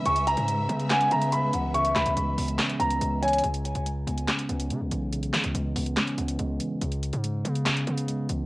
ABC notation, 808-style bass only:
X:1
M:4/4
L:1/16
Q:1/4=142
K:C#dor
V:1 name="808-style bass" clef=bass
C,,3 G,,3 C,4 C,4 C,,2- | C,,2 C,, C,, C,,2 C,,2 z2 C,,2 C,,4 | C,,3 C,,3 C,,2 z2 C,,2 C, C,, B,,,2- | B,,,2 C, C,, C,,2 C,,2 z2 C,,2 C,,2 z2 |
C,,3 G,,3 C,4 C,4 C,,2 |]